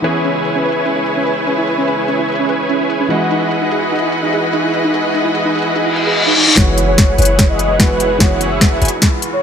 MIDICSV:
0, 0, Header, 1, 10, 480
1, 0, Start_track
1, 0, Tempo, 408163
1, 48, Time_signature, 4, 2, 24, 8
1, 11085, End_track
2, 0, Start_track
2, 0, Title_t, "Soft synth lead"
2, 0, Program_c, 0, 80
2, 7728, Note_on_c, 0, 73, 104
2, 8039, Note_off_c, 0, 73, 0
2, 8092, Note_on_c, 0, 73, 96
2, 8398, Note_off_c, 0, 73, 0
2, 8447, Note_on_c, 0, 73, 93
2, 8758, Note_off_c, 0, 73, 0
2, 8812, Note_on_c, 0, 75, 93
2, 9118, Note_off_c, 0, 75, 0
2, 9168, Note_on_c, 0, 71, 100
2, 9648, Note_on_c, 0, 73, 98
2, 9666, Note_off_c, 0, 71, 0
2, 9958, Note_off_c, 0, 73, 0
2, 10011, Note_on_c, 0, 76, 97
2, 10318, Note_off_c, 0, 76, 0
2, 10970, Note_on_c, 0, 73, 94
2, 11085, Note_off_c, 0, 73, 0
2, 11085, End_track
3, 0, Start_track
3, 0, Title_t, "Supersaw synth"
3, 0, Program_c, 1, 81
3, 48, Note_on_c, 1, 64, 73
3, 48, Note_on_c, 1, 68, 68
3, 48, Note_on_c, 1, 71, 71
3, 48, Note_on_c, 1, 73, 68
3, 48, Note_on_c, 1, 80, 85
3, 3620, Note_off_c, 1, 64, 0
3, 3620, Note_off_c, 1, 68, 0
3, 3620, Note_off_c, 1, 71, 0
3, 3620, Note_off_c, 1, 73, 0
3, 3620, Note_off_c, 1, 80, 0
3, 3647, Note_on_c, 1, 71, 69
3, 3647, Note_on_c, 1, 75, 71
3, 3647, Note_on_c, 1, 78, 81
3, 3648, Note_on_c, 1, 64, 75
3, 3648, Note_on_c, 1, 68, 70
3, 7460, Note_off_c, 1, 64, 0
3, 7460, Note_off_c, 1, 68, 0
3, 7460, Note_off_c, 1, 71, 0
3, 7460, Note_off_c, 1, 75, 0
3, 7460, Note_off_c, 1, 78, 0
3, 7727, Note_on_c, 1, 64, 78
3, 7727, Note_on_c, 1, 68, 73
3, 7727, Note_on_c, 1, 71, 72
3, 7727, Note_on_c, 1, 73, 76
3, 7727, Note_on_c, 1, 78, 89
3, 8420, Note_off_c, 1, 64, 0
3, 8420, Note_off_c, 1, 68, 0
3, 8420, Note_off_c, 1, 71, 0
3, 8420, Note_off_c, 1, 73, 0
3, 8420, Note_off_c, 1, 78, 0
3, 8446, Note_on_c, 1, 73, 84
3, 8447, Note_on_c, 1, 64, 88
3, 8447, Note_on_c, 1, 68, 84
3, 8447, Note_on_c, 1, 71, 81
3, 8447, Note_on_c, 1, 78, 102
3, 9619, Note_off_c, 1, 64, 0
3, 9619, Note_off_c, 1, 73, 0
3, 9619, Note_off_c, 1, 78, 0
3, 9620, Note_off_c, 1, 68, 0
3, 9620, Note_off_c, 1, 71, 0
3, 9646, Note_on_c, 1, 64, 97
3, 9646, Note_on_c, 1, 68, 86
3, 9646, Note_on_c, 1, 71, 85
3, 9646, Note_on_c, 1, 73, 85
3, 9646, Note_on_c, 1, 78, 99
3, 10339, Note_off_c, 1, 64, 0
3, 10339, Note_off_c, 1, 71, 0
3, 10339, Note_off_c, 1, 73, 0
3, 10339, Note_off_c, 1, 78, 0
3, 10340, Note_off_c, 1, 68, 0
3, 10366, Note_on_c, 1, 64, 80
3, 10366, Note_on_c, 1, 68, 74
3, 10366, Note_on_c, 1, 71, 79
3, 10366, Note_on_c, 1, 73, 75
3, 10366, Note_on_c, 1, 80, 90
3, 10466, Note_off_c, 1, 64, 0
3, 10466, Note_off_c, 1, 68, 0
3, 10466, Note_off_c, 1, 71, 0
3, 10466, Note_off_c, 1, 73, 0
3, 10466, Note_off_c, 1, 80, 0
3, 11085, End_track
4, 0, Start_track
4, 0, Title_t, "Synth arpeggio sound"
4, 0, Program_c, 2, 84
4, 49, Note_on_c, 2, 71, 101
4, 109, Note_off_c, 2, 71, 0
4, 288, Note_on_c, 2, 61, 77
4, 349, Note_off_c, 2, 61, 0
4, 411, Note_on_c, 2, 64, 75
4, 469, Note_off_c, 2, 64, 0
4, 652, Note_on_c, 2, 61, 98
4, 738, Note_off_c, 2, 61, 0
4, 768, Note_on_c, 2, 71, 98
4, 829, Note_off_c, 2, 71, 0
4, 1009, Note_on_c, 2, 61, 80
4, 1069, Note_off_c, 2, 61, 0
4, 1132, Note_on_c, 2, 64, 72
4, 1189, Note_off_c, 2, 64, 0
4, 1374, Note_on_c, 2, 61, 101
4, 1459, Note_off_c, 2, 61, 0
4, 1490, Note_on_c, 2, 71, 99
4, 1550, Note_off_c, 2, 71, 0
4, 1728, Note_on_c, 2, 61, 73
4, 1789, Note_off_c, 2, 61, 0
4, 1853, Note_on_c, 2, 64, 74
4, 1910, Note_off_c, 2, 64, 0
4, 2093, Note_on_c, 2, 61, 92
4, 2178, Note_off_c, 2, 61, 0
4, 2211, Note_on_c, 2, 71, 102
4, 2270, Note_off_c, 2, 71, 0
4, 2450, Note_on_c, 2, 61, 79
4, 2510, Note_off_c, 2, 61, 0
4, 2574, Note_on_c, 2, 64, 73
4, 2630, Note_off_c, 2, 64, 0
4, 2814, Note_on_c, 2, 61, 98
4, 2899, Note_off_c, 2, 61, 0
4, 2930, Note_on_c, 2, 71, 98
4, 2990, Note_off_c, 2, 71, 0
4, 3168, Note_on_c, 2, 61, 73
4, 3229, Note_off_c, 2, 61, 0
4, 3293, Note_on_c, 2, 64, 75
4, 3349, Note_off_c, 2, 64, 0
4, 3533, Note_on_c, 2, 61, 97
4, 3618, Note_off_c, 2, 61, 0
4, 3650, Note_on_c, 2, 68, 96
4, 3710, Note_off_c, 2, 68, 0
4, 3892, Note_on_c, 2, 63, 78
4, 3951, Note_off_c, 2, 63, 0
4, 4015, Note_on_c, 2, 64, 69
4, 4071, Note_off_c, 2, 64, 0
4, 4253, Note_on_c, 2, 63, 98
4, 4338, Note_off_c, 2, 63, 0
4, 4371, Note_on_c, 2, 68, 101
4, 4430, Note_off_c, 2, 68, 0
4, 4611, Note_on_c, 2, 63, 71
4, 4670, Note_off_c, 2, 63, 0
4, 4735, Note_on_c, 2, 64, 70
4, 4791, Note_off_c, 2, 64, 0
4, 4973, Note_on_c, 2, 63, 99
4, 5058, Note_off_c, 2, 63, 0
4, 5090, Note_on_c, 2, 68, 96
4, 5150, Note_off_c, 2, 68, 0
4, 5331, Note_on_c, 2, 63, 80
4, 5390, Note_off_c, 2, 63, 0
4, 5454, Note_on_c, 2, 64, 73
4, 5510, Note_off_c, 2, 64, 0
4, 5695, Note_on_c, 2, 63, 96
4, 5779, Note_off_c, 2, 63, 0
4, 5811, Note_on_c, 2, 68, 98
4, 5870, Note_off_c, 2, 68, 0
4, 6050, Note_on_c, 2, 63, 75
4, 6110, Note_off_c, 2, 63, 0
4, 6174, Note_on_c, 2, 64, 73
4, 6230, Note_off_c, 2, 64, 0
4, 6414, Note_on_c, 2, 63, 97
4, 6499, Note_off_c, 2, 63, 0
4, 6530, Note_on_c, 2, 68, 94
4, 6590, Note_off_c, 2, 68, 0
4, 6770, Note_on_c, 2, 63, 81
4, 6830, Note_off_c, 2, 63, 0
4, 6893, Note_on_c, 2, 64, 73
4, 6950, Note_off_c, 2, 64, 0
4, 7133, Note_on_c, 2, 68, 77
4, 7218, Note_off_c, 2, 68, 0
4, 7249, Note_on_c, 2, 75, 101
4, 7309, Note_off_c, 2, 75, 0
4, 7372, Note_on_c, 2, 63, 102
4, 7429, Note_off_c, 2, 63, 0
4, 7489, Note_on_c, 2, 63, 75
4, 7579, Note_off_c, 2, 63, 0
4, 7613, Note_on_c, 2, 63, 75
4, 7670, Note_off_c, 2, 63, 0
4, 11085, End_track
5, 0, Start_track
5, 0, Title_t, "Grand piano"
5, 0, Program_c, 3, 0
5, 0, Control_c, 3, 64, 127
5, 24, Note_on_c, 3, 52, 73
5, 40, Note_on_c, 3, 59, 65
5, 56, Note_on_c, 3, 61, 64
5, 64, Control_c, 3, 64, 0
5, 72, Note_on_c, 3, 68, 74
5, 274, Control_c, 3, 64, 127
5, 3608, Note_off_c, 3, 52, 0
5, 3616, Note_off_c, 3, 59, 0
5, 3624, Note_off_c, 3, 61, 0
5, 3626, Note_on_c, 3, 52, 72
5, 3632, Note_off_c, 3, 68, 0
5, 3641, Note_on_c, 3, 56, 67
5, 3657, Note_on_c, 3, 75, 65
5, 3665, Control_c, 3, 64, 0
5, 3672, Note_on_c, 3, 66, 80
5, 3898, Control_c, 3, 64, 127
5, 7449, Note_off_c, 3, 52, 0
5, 7456, Note_off_c, 3, 56, 0
5, 7464, Note_off_c, 3, 75, 0
5, 7472, Note_off_c, 3, 66, 0
5, 7707, Note_on_c, 3, 52, 83
5, 7722, Note_on_c, 3, 56, 74
5, 7738, Note_on_c, 3, 59, 79
5, 7746, Control_c, 3, 64, 0
5, 7753, Note_on_c, 3, 66, 93
5, 7949, Control_c, 3, 64, 127
5, 9130, Note_off_c, 3, 52, 0
5, 9137, Note_off_c, 3, 56, 0
5, 9145, Note_off_c, 3, 59, 0
5, 9153, Note_off_c, 3, 66, 0
5, 9158, Note_on_c, 3, 52, 75
5, 9165, Note_on_c, 3, 56, 66
5, 9174, Note_on_c, 3, 59, 68
5, 9181, Note_on_c, 3, 66, 80
5, 9607, Note_off_c, 3, 52, 0
5, 9619, Note_off_c, 3, 56, 0
5, 9623, Note_off_c, 3, 59, 0
5, 9625, Note_on_c, 3, 52, 85
5, 9627, Note_off_c, 3, 66, 0
5, 9641, Note_on_c, 3, 56, 78
5, 9657, Note_on_c, 3, 59, 78
5, 9673, Note_on_c, 3, 66, 96
5, 11049, Note_off_c, 3, 52, 0
5, 11057, Note_off_c, 3, 56, 0
5, 11065, Note_off_c, 3, 59, 0
5, 11073, Note_off_c, 3, 66, 0
5, 11085, End_track
6, 0, Start_track
6, 0, Title_t, "String section"
6, 0, Program_c, 4, 48
6, 0, Note_on_c, 4, 56, 63
6, 47, Note_on_c, 4, 49, 68
6, 48, Note_on_c, 4, 64, 63
6, 48, Note_on_c, 4, 71, 76
6, 3612, Note_off_c, 4, 49, 0
6, 3612, Note_off_c, 4, 64, 0
6, 3612, Note_off_c, 4, 71, 0
6, 3649, Note_on_c, 4, 52, 73
6, 3649, Note_on_c, 4, 75, 82
6, 3650, Note_on_c, 4, 66, 64
6, 7681, Note_off_c, 4, 56, 0
6, 7688, Note_off_c, 4, 52, 0
6, 7688, Note_off_c, 4, 75, 0
6, 7689, Note_off_c, 4, 66, 0
6, 7728, Note_on_c, 4, 66, 80
6, 7729, Note_on_c, 4, 52, 70
6, 7729, Note_on_c, 4, 56, 65
6, 7729, Note_on_c, 4, 59, 67
6, 11085, Note_off_c, 4, 52, 0
6, 11085, Note_off_c, 4, 56, 0
6, 11085, Note_off_c, 4, 59, 0
6, 11085, Note_off_c, 4, 66, 0
6, 11085, End_track
7, 0, Start_track
7, 0, Title_t, "808-style bass"
7, 0, Program_c, 5, 38
7, 7729, Note_on_c, 5, 30, 97
7, 8425, Note_off_c, 5, 30, 0
7, 8450, Note_on_c, 5, 30, 92
7, 9626, Note_off_c, 5, 30, 0
7, 9648, Note_on_c, 5, 30, 94
7, 10345, Note_off_c, 5, 30, 0
7, 10369, Note_on_c, 5, 30, 95
7, 10443, Note_off_c, 5, 30, 0
7, 11085, End_track
8, 0, Start_track
8, 0, Title_t, "Reverse cymbal"
8, 0, Program_c, 6, 119
8, 6769, Note_on_c, 6, 60, 72
8, 7729, Note_off_c, 6, 60, 0
8, 11085, End_track
9, 0, Start_track
9, 0, Title_t, "Riser"
9, 0, Program_c, 7, 103
9, 7728, Note_on_c, 7, 60, 76
9, 11085, Note_off_c, 7, 60, 0
9, 11085, End_track
10, 0, Start_track
10, 0, Title_t, "Drums"
10, 49, Note_on_c, 9, 42, 68
10, 166, Note_off_c, 9, 42, 0
10, 288, Note_on_c, 9, 42, 58
10, 406, Note_off_c, 9, 42, 0
10, 529, Note_on_c, 9, 42, 72
10, 646, Note_off_c, 9, 42, 0
10, 768, Note_on_c, 9, 42, 44
10, 810, Note_off_c, 9, 42, 0
10, 810, Note_on_c, 9, 42, 58
10, 848, Note_off_c, 9, 42, 0
10, 848, Note_on_c, 9, 42, 72
10, 966, Note_off_c, 9, 42, 0
10, 1007, Note_on_c, 9, 42, 65
10, 1125, Note_off_c, 9, 42, 0
10, 1248, Note_on_c, 9, 42, 59
10, 1365, Note_off_c, 9, 42, 0
10, 1488, Note_on_c, 9, 42, 70
10, 1605, Note_off_c, 9, 42, 0
10, 1728, Note_on_c, 9, 42, 55
10, 1845, Note_off_c, 9, 42, 0
10, 1968, Note_on_c, 9, 42, 74
10, 2086, Note_off_c, 9, 42, 0
10, 2208, Note_on_c, 9, 42, 61
10, 2325, Note_off_c, 9, 42, 0
10, 2448, Note_on_c, 9, 42, 75
10, 2566, Note_off_c, 9, 42, 0
10, 2689, Note_on_c, 9, 42, 45
10, 2729, Note_off_c, 9, 42, 0
10, 2729, Note_on_c, 9, 42, 58
10, 2768, Note_off_c, 9, 42, 0
10, 2768, Note_on_c, 9, 42, 73
10, 2886, Note_off_c, 9, 42, 0
10, 2928, Note_on_c, 9, 42, 71
10, 3046, Note_off_c, 9, 42, 0
10, 3168, Note_on_c, 9, 42, 62
10, 3286, Note_off_c, 9, 42, 0
10, 3408, Note_on_c, 9, 42, 70
10, 3526, Note_off_c, 9, 42, 0
10, 3648, Note_on_c, 9, 42, 59
10, 3766, Note_off_c, 9, 42, 0
10, 3889, Note_on_c, 9, 42, 73
10, 4007, Note_off_c, 9, 42, 0
10, 4129, Note_on_c, 9, 42, 62
10, 4247, Note_off_c, 9, 42, 0
10, 4370, Note_on_c, 9, 42, 77
10, 4487, Note_off_c, 9, 42, 0
10, 4611, Note_on_c, 9, 42, 47
10, 4650, Note_off_c, 9, 42, 0
10, 4650, Note_on_c, 9, 42, 62
10, 4689, Note_off_c, 9, 42, 0
10, 4689, Note_on_c, 9, 42, 77
10, 4806, Note_off_c, 9, 42, 0
10, 4848, Note_on_c, 9, 42, 72
10, 4966, Note_off_c, 9, 42, 0
10, 5089, Note_on_c, 9, 42, 64
10, 5206, Note_off_c, 9, 42, 0
10, 5330, Note_on_c, 9, 42, 72
10, 5447, Note_off_c, 9, 42, 0
10, 5570, Note_on_c, 9, 42, 63
10, 5687, Note_off_c, 9, 42, 0
10, 5810, Note_on_c, 9, 42, 77
10, 5927, Note_off_c, 9, 42, 0
10, 6050, Note_on_c, 9, 42, 61
10, 6168, Note_off_c, 9, 42, 0
10, 6290, Note_on_c, 9, 42, 81
10, 6408, Note_off_c, 9, 42, 0
10, 6531, Note_on_c, 9, 42, 49
10, 6571, Note_off_c, 9, 42, 0
10, 6571, Note_on_c, 9, 42, 61
10, 6610, Note_off_c, 9, 42, 0
10, 6610, Note_on_c, 9, 42, 79
10, 6727, Note_off_c, 9, 42, 0
10, 6769, Note_on_c, 9, 42, 72
10, 6886, Note_off_c, 9, 42, 0
10, 7009, Note_on_c, 9, 42, 63
10, 7127, Note_off_c, 9, 42, 0
10, 7250, Note_on_c, 9, 42, 73
10, 7367, Note_off_c, 9, 42, 0
10, 7490, Note_on_c, 9, 42, 62
10, 7608, Note_off_c, 9, 42, 0
10, 7729, Note_on_c, 9, 36, 93
10, 7730, Note_on_c, 9, 38, 49
10, 7730, Note_on_c, 9, 42, 77
10, 7846, Note_off_c, 9, 36, 0
10, 7847, Note_off_c, 9, 38, 0
10, 7847, Note_off_c, 9, 42, 0
10, 7969, Note_on_c, 9, 42, 63
10, 8086, Note_off_c, 9, 42, 0
10, 8208, Note_on_c, 9, 36, 96
10, 8209, Note_on_c, 9, 38, 49
10, 8209, Note_on_c, 9, 42, 82
10, 8326, Note_off_c, 9, 36, 0
10, 8326, Note_off_c, 9, 38, 0
10, 8326, Note_off_c, 9, 42, 0
10, 8449, Note_on_c, 9, 42, 50
10, 8490, Note_off_c, 9, 42, 0
10, 8490, Note_on_c, 9, 42, 63
10, 8529, Note_off_c, 9, 42, 0
10, 8529, Note_on_c, 9, 42, 83
10, 8646, Note_off_c, 9, 42, 0
10, 8688, Note_on_c, 9, 36, 91
10, 8688, Note_on_c, 9, 38, 45
10, 8688, Note_on_c, 9, 42, 78
10, 8805, Note_off_c, 9, 38, 0
10, 8805, Note_off_c, 9, 42, 0
10, 8806, Note_off_c, 9, 36, 0
10, 8928, Note_on_c, 9, 42, 65
10, 9046, Note_off_c, 9, 42, 0
10, 9168, Note_on_c, 9, 36, 92
10, 9169, Note_on_c, 9, 38, 49
10, 9169, Note_on_c, 9, 42, 75
10, 9285, Note_off_c, 9, 36, 0
10, 9286, Note_off_c, 9, 38, 0
10, 9286, Note_off_c, 9, 42, 0
10, 9409, Note_on_c, 9, 42, 64
10, 9526, Note_off_c, 9, 42, 0
10, 9647, Note_on_c, 9, 36, 94
10, 9648, Note_on_c, 9, 38, 49
10, 9648, Note_on_c, 9, 42, 75
10, 9765, Note_off_c, 9, 36, 0
10, 9765, Note_off_c, 9, 38, 0
10, 9765, Note_off_c, 9, 42, 0
10, 9887, Note_on_c, 9, 42, 62
10, 10005, Note_off_c, 9, 42, 0
10, 10127, Note_on_c, 9, 36, 99
10, 10128, Note_on_c, 9, 38, 55
10, 10128, Note_on_c, 9, 42, 77
10, 10245, Note_off_c, 9, 36, 0
10, 10245, Note_off_c, 9, 38, 0
10, 10245, Note_off_c, 9, 42, 0
10, 10368, Note_on_c, 9, 42, 48
10, 10408, Note_off_c, 9, 42, 0
10, 10408, Note_on_c, 9, 42, 62
10, 10447, Note_off_c, 9, 42, 0
10, 10447, Note_on_c, 9, 42, 80
10, 10565, Note_off_c, 9, 42, 0
10, 10606, Note_on_c, 9, 38, 53
10, 10606, Note_on_c, 9, 42, 76
10, 10607, Note_on_c, 9, 36, 87
10, 10723, Note_off_c, 9, 38, 0
10, 10723, Note_off_c, 9, 42, 0
10, 10725, Note_off_c, 9, 36, 0
10, 10846, Note_on_c, 9, 42, 64
10, 10964, Note_off_c, 9, 42, 0
10, 11085, End_track
0, 0, End_of_file